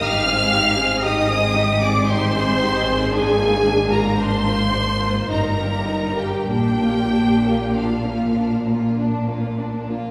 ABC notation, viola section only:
X:1
M:3/4
L:1/16
Q:1/4=54
K:Bbmix
V:1 name="Viola section"
f4 e3 d c4 | A3 B c4 B3 G | G4 F4 z4 |]